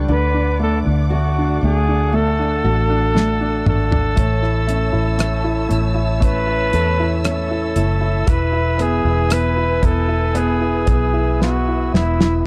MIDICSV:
0, 0, Header, 1, 7, 480
1, 0, Start_track
1, 0, Tempo, 1023891
1, 41, Time_signature, 4, 2, 24, 8
1, 3881, Tempo, 1045296
1, 5804, End_track
2, 0, Start_track
2, 0, Title_t, "String section"
2, 0, Program_c, 0, 48
2, 0, Note_on_c, 0, 74, 57
2, 35, Note_on_c, 0, 78, 58
2, 36, Note_on_c, 0, 86, 67
2, 37, Note_on_c, 0, 57, 65
2, 987, Note_off_c, 0, 86, 0
2, 999, Note_on_c, 0, 88, 81
2, 1934, Note_off_c, 0, 78, 0
2, 1935, Note_off_c, 0, 57, 0
2, 1938, Note_off_c, 0, 74, 0
2, 1956, Note_on_c, 0, 81, 64
2, 1959, Note_on_c, 0, 76, 61
2, 1962, Note_on_c, 0, 73, 69
2, 3864, Note_off_c, 0, 81, 0
2, 3867, Note_off_c, 0, 73, 0
2, 3874, Note_on_c, 0, 71, 66
2, 3875, Note_on_c, 0, 80, 66
2, 5778, Note_off_c, 0, 71, 0
2, 5779, Note_off_c, 0, 80, 0
2, 5783, Note_off_c, 0, 88, 0
2, 5784, Note_off_c, 0, 76, 0
2, 5804, End_track
3, 0, Start_track
3, 0, Title_t, "Flugelhorn"
3, 0, Program_c, 1, 56
3, 51, Note_on_c, 1, 71, 93
3, 270, Note_off_c, 1, 71, 0
3, 295, Note_on_c, 1, 69, 85
3, 370, Note_off_c, 1, 69, 0
3, 533, Note_on_c, 1, 66, 80
3, 749, Note_off_c, 1, 66, 0
3, 772, Note_on_c, 1, 68, 91
3, 1008, Note_on_c, 1, 69, 93
3, 1015, Note_off_c, 1, 68, 0
3, 1722, Note_off_c, 1, 69, 0
3, 1727, Note_on_c, 1, 69, 95
3, 2776, Note_off_c, 1, 69, 0
3, 2926, Note_on_c, 1, 71, 108
3, 3385, Note_off_c, 1, 71, 0
3, 3414, Note_on_c, 1, 69, 88
3, 3887, Note_on_c, 1, 71, 107
3, 3894, Note_off_c, 1, 69, 0
3, 4125, Note_on_c, 1, 68, 90
3, 4132, Note_off_c, 1, 71, 0
3, 4361, Note_on_c, 1, 71, 96
3, 4368, Note_off_c, 1, 68, 0
3, 4603, Note_on_c, 1, 69, 87
3, 4609, Note_off_c, 1, 71, 0
3, 4845, Note_on_c, 1, 68, 91
3, 4851, Note_off_c, 1, 69, 0
3, 5322, Note_off_c, 1, 68, 0
3, 5325, Note_on_c, 1, 66, 84
3, 5549, Note_off_c, 1, 66, 0
3, 5567, Note_on_c, 1, 64, 85
3, 5745, Note_off_c, 1, 64, 0
3, 5804, End_track
4, 0, Start_track
4, 0, Title_t, "Grand piano"
4, 0, Program_c, 2, 0
4, 0, Control_c, 2, 64, 127
4, 0, Note_on_c, 2, 55, 43
4, 0, Note_on_c, 2, 62, 50
4, 43, Note_on_c, 2, 50, 51
4, 46, Control_c, 2, 64, 0
4, 49, Note_off_c, 2, 55, 0
4, 50, Note_off_c, 2, 62, 0
4, 128, Control_c, 2, 64, 127
4, 160, Note_on_c, 2, 62, 50
4, 280, Note_on_c, 2, 57, 45
4, 394, Note_off_c, 2, 62, 0
4, 401, Note_on_c, 2, 62, 42
4, 517, Note_off_c, 2, 57, 0
4, 524, Note_on_c, 2, 57, 47
4, 642, Note_off_c, 2, 62, 0
4, 649, Note_on_c, 2, 62, 45
4, 761, Note_off_c, 2, 57, 0
4, 768, Note_on_c, 2, 57, 51
4, 877, Note_off_c, 2, 62, 0
4, 884, Note_on_c, 2, 62, 46
4, 992, Note_off_c, 2, 57, 0
4, 999, Note_on_c, 2, 57, 61
4, 1114, Note_off_c, 2, 62, 0
4, 1121, Note_on_c, 2, 62, 43
4, 1230, Note_off_c, 2, 57, 0
4, 1237, Note_on_c, 2, 57, 50
4, 1350, Note_off_c, 2, 62, 0
4, 1358, Note_on_c, 2, 62, 48
4, 1466, Note_off_c, 2, 57, 0
4, 1473, Note_on_c, 2, 57, 44
4, 1589, Note_off_c, 2, 62, 0
4, 1596, Note_on_c, 2, 62, 49
4, 1708, Note_off_c, 2, 57, 0
4, 1715, Note_on_c, 2, 57, 48
4, 1826, Note_off_c, 2, 62, 0
4, 1833, Note_on_c, 2, 62, 51
4, 1938, Note_off_c, 2, 50, 0
4, 1943, Note_off_c, 2, 57, 0
4, 1950, Note_off_c, 2, 62, 0
4, 1950, Note_on_c, 2, 57, 55
4, 1961, Control_c, 2, 64, 0
4, 2051, Control_c, 2, 64, 127
4, 2072, Note_on_c, 2, 64, 53
4, 2183, Note_off_c, 2, 57, 0
4, 2190, Note_on_c, 2, 57, 50
4, 2301, Note_off_c, 2, 64, 0
4, 2308, Note_on_c, 2, 64, 51
4, 2421, Note_off_c, 2, 57, 0
4, 2428, Note_on_c, 2, 57, 49
4, 2543, Note_off_c, 2, 64, 0
4, 2550, Note_on_c, 2, 64, 52
4, 2659, Note_off_c, 2, 57, 0
4, 2666, Note_on_c, 2, 57, 54
4, 2779, Note_off_c, 2, 64, 0
4, 2786, Note_on_c, 2, 64, 55
4, 2901, Note_off_c, 2, 57, 0
4, 2908, Note_on_c, 2, 57, 68
4, 3024, Note_off_c, 2, 64, 0
4, 3031, Note_on_c, 2, 64, 47
4, 3147, Note_off_c, 2, 57, 0
4, 3154, Note_on_c, 2, 57, 54
4, 3272, Note_off_c, 2, 64, 0
4, 3279, Note_on_c, 2, 64, 54
4, 3388, Note_off_c, 2, 57, 0
4, 3395, Note_on_c, 2, 57, 46
4, 3511, Note_off_c, 2, 64, 0
4, 3518, Note_on_c, 2, 64, 51
4, 3633, Note_off_c, 2, 57, 0
4, 3640, Note_on_c, 2, 57, 46
4, 3746, Note_off_c, 2, 64, 0
4, 3753, Note_on_c, 2, 64, 51
4, 3874, Note_off_c, 2, 57, 0
4, 3874, Note_off_c, 2, 64, 0
4, 3876, Note_on_c, 2, 52, 56
4, 3889, Control_c, 2, 64, 0
4, 3968, Control_c, 2, 64, 127
4, 3993, Note_on_c, 2, 64, 49
4, 4111, Note_on_c, 2, 59, 53
4, 4230, Note_off_c, 2, 64, 0
4, 4237, Note_on_c, 2, 64, 52
4, 4345, Note_off_c, 2, 59, 0
4, 4352, Note_on_c, 2, 59, 52
4, 4465, Note_off_c, 2, 64, 0
4, 4472, Note_on_c, 2, 64, 52
4, 4582, Note_off_c, 2, 59, 0
4, 4589, Note_on_c, 2, 59, 53
4, 4701, Note_off_c, 2, 64, 0
4, 4708, Note_on_c, 2, 64, 54
4, 4824, Note_off_c, 2, 59, 0
4, 4831, Note_on_c, 2, 59, 73
4, 4944, Note_off_c, 2, 64, 0
4, 4951, Note_on_c, 2, 64, 48
4, 5061, Note_off_c, 2, 59, 0
4, 5068, Note_on_c, 2, 59, 55
4, 5184, Note_off_c, 2, 64, 0
4, 5191, Note_on_c, 2, 64, 56
4, 5309, Note_off_c, 2, 59, 0
4, 5316, Note_on_c, 2, 59, 47
4, 5435, Note_off_c, 2, 64, 0
4, 5442, Note_on_c, 2, 64, 49
4, 5555, Note_off_c, 2, 59, 0
4, 5562, Note_on_c, 2, 59, 51
4, 5674, Note_off_c, 2, 64, 0
4, 5681, Note_on_c, 2, 64, 53
4, 5779, Note_off_c, 2, 52, 0
4, 5793, Note_off_c, 2, 59, 0
4, 5796, Note_off_c, 2, 64, 0
4, 5804, End_track
5, 0, Start_track
5, 0, Title_t, "Nylon-string guitar"
5, 0, Program_c, 3, 24
5, 0, Note_on_c, 3, 59, 47
5, 0, Note_on_c, 3, 62, 49
5, 0, Note_on_c, 3, 67, 53
5, 40, Note_on_c, 3, 50, 71
5, 85, Note_off_c, 3, 67, 0
5, 87, Note_off_c, 3, 59, 0
5, 277, Note_on_c, 3, 57, 51
5, 516, Note_on_c, 3, 66, 55
5, 754, Note_off_c, 3, 62, 0
5, 756, Note_on_c, 3, 62, 50
5, 995, Note_off_c, 3, 57, 0
5, 996, Note_on_c, 3, 57, 58
5, 1233, Note_off_c, 3, 66, 0
5, 1239, Note_on_c, 3, 66, 57
5, 1475, Note_off_c, 3, 57, 0
5, 1476, Note_on_c, 3, 57, 56
5, 1712, Note_off_c, 3, 62, 0
5, 1718, Note_on_c, 3, 62, 49
5, 1955, Note_off_c, 3, 50, 0
5, 1958, Note_on_c, 3, 45, 74
5, 2003, Note_off_c, 3, 66, 0
5, 2004, Note_off_c, 3, 62, 0
5, 2198, Note_off_c, 3, 57, 0
5, 2200, Note_on_c, 3, 61, 54
5, 2438, Note_on_c, 3, 69, 61
5, 2678, Note_on_c, 3, 64, 56
5, 2914, Note_off_c, 3, 61, 0
5, 2920, Note_on_c, 3, 61, 60
5, 3154, Note_off_c, 3, 69, 0
5, 3159, Note_on_c, 3, 69, 60
5, 3393, Note_off_c, 3, 61, 0
5, 3399, Note_on_c, 3, 61, 58
5, 3640, Note_off_c, 3, 64, 0
5, 3642, Note_on_c, 3, 64, 52
5, 3881, Note_on_c, 3, 52, 83
5, 3884, Note_off_c, 3, 45, 0
5, 3929, Note_off_c, 3, 61, 0
5, 3930, Note_off_c, 3, 69, 0
5, 4118, Note_on_c, 3, 59, 53
5, 4594, Note_off_c, 3, 64, 0
5, 4595, Note_on_c, 3, 64, 59
5, 4827, Note_off_c, 3, 59, 0
5, 4832, Note_on_c, 3, 59, 63
5, 5074, Note_on_c, 3, 68, 59
5, 5313, Note_off_c, 3, 59, 0
5, 5318, Note_on_c, 3, 59, 52
5, 5557, Note_off_c, 3, 64, 0
5, 5563, Note_on_c, 3, 64, 54
5, 5800, Note_off_c, 3, 52, 0
5, 5804, Note_off_c, 3, 59, 0
5, 5804, Note_off_c, 3, 64, 0
5, 5804, Note_off_c, 3, 68, 0
5, 5804, End_track
6, 0, Start_track
6, 0, Title_t, "Fingered electric bass"
6, 0, Program_c, 4, 33
6, 40, Note_on_c, 4, 38, 86
6, 382, Note_off_c, 4, 38, 0
6, 406, Note_on_c, 4, 38, 74
6, 742, Note_off_c, 4, 38, 0
6, 763, Note_on_c, 4, 38, 78
6, 1222, Note_off_c, 4, 38, 0
6, 1240, Note_on_c, 4, 33, 75
6, 1699, Note_off_c, 4, 33, 0
6, 1717, Note_on_c, 4, 32, 77
6, 1939, Note_off_c, 4, 32, 0
6, 1958, Note_on_c, 4, 33, 93
6, 2297, Note_off_c, 4, 33, 0
6, 2314, Note_on_c, 4, 33, 74
6, 2657, Note_off_c, 4, 33, 0
6, 2677, Note_on_c, 4, 33, 93
6, 3140, Note_off_c, 4, 33, 0
6, 3157, Note_on_c, 4, 40, 76
6, 3622, Note_off_c, 4, 40, 0
6, 3637, Note_on_c, 4, 30, 70
6, 3863, Note_off_c, 4, 30, 0
6, 3880, Note_on_c, 4, 28, 90
6, 4218, Note_off_c, 4, 28, 0
6, 4235, Note_on_c, 4, 28, 85
6, 4576, Note_off_c, 4, 28, 0
6, 4594, Note_on_c, 4, 28, 95
6, 5058, Note_off_c, 4, 28, 0
6, 5074, Note_on_c, 4, 35, 84
6, 5543, Note_off_c, 4, 35, 0
6, 5562, Note_on_c, 4, 28, 88
6, 5783, Note_off_c, 4, 28, 0
6, 5804, End_track
7, 0, Start_track
7, 0, Title_t, "Drums"
7, 1484, Note_on_c, 9, 38, 51
7, 1531, Note_off_c, 9, 38, 0
7, 1718, Note_on_c, 9, 45, 77
7, 1765, Note_off_c, 9, 45, 0
7, 1839, Note_on_c, 9, 43, 82
7, 1886, Note_off_c, 9, 43, 0
7, 1956, Note_on_c, 9, 42, 85
7, 1957, Note_on_c, 9, 36, 104
7, 2003, Note_off_c, 9, 42, 0
7, 2004, Note_off_c, 9, 36, 0
7, 2080, Note_on_c, 9, 37, 31
7, 2127, Note_off_c, 9, 37, 0
7, 2197, Note_on_c, 9, 42, 65
7, 2244, Note_off_c, 9, 42, 0
7, 2432, Note_on_c, 9, 42, 87
7, 2439, Note_on_c, 9, 37, 101
7, 2479, Note_off_c, 9, 42, 0
7, 2486, Note_off_c, 9, 37, 0
7, 2675, Note_on_c, 9, 42, 58
7, 2722, Note_off_c, 9, 42, 0
7, 2917, Note_on_c, 9, 42, 70
7, 2918, Note_on_c, 9, 36, 71
7, 2964, Note_off_c, 9, 36, 0
7, 2964, Note_off_c, 9, 42, 0
7, 3155, Note_on_c, 9, 42, 57
7, 3202, Note_off_c, 9, 42, 0
7, 3396, Note_on_c, 9, 42, 77
7, 3400, Note_on_c, 9, 37, 105
7, 3443, Note_off_c, 9, 42, 0
7, 3447, Note_off_c, 9, 37, 0
7, 3638, Note_on_c, 9, 42, 67
7, 3684, Note_off_c, 9, 42, 0
7, 3879, Note_on_c, 9, 42, 90
7, 3880, Note_on_c, 9, 36, 95
7, 3925, Note_off_c, 9, 42, 0
7, 3926, Note_off_c, 9, 36, 0
7, 4117, Note_on_c, 9, 42, 73
7, 4163, Note_off_c, 9, 42, 0
7, 4352, Note_on_c, 9, 42, 93
7, 4358, Note_on_c, 9, 37, 103
7, 4398, Note_off_c, 9, 42, 0
7, 4404, Note_off_c, 9, 37, 0
7, 4593, Note_on_c, 9, 36, 82
7, 4593, Note_on_c, 9, 42, 61
7, 4639, Note_off_c, 9, 36, 0
7, 4639, Note_off_c, 9, 42, 0
7, 4833, Note_on_c, 9, 42, 78
7, 4879, Note_off_c, 9, 42, 0
7, 5071, Note_on_c, 9, 42, 64
7, 5074, Note_on_c, 9, 36, 72
7, 5117, Note_off_c, 9, 42, 0
7, 5120, Note_off_c, 9, 36, 0
7, 5322, Note_on_c, 9, 38, 49
7, 5368, Note_off_c, 9, 38, 0
7, 5567, Note_on_c, 9, 38, 82
7, 5613, Note_off_c, 9, 38, 0
7, 5684, Note_on_c, 9, 38, 80
7, 5730, Note_off_c, 9, 38, 0
7, 5804, End_track
0, 0, End_of_file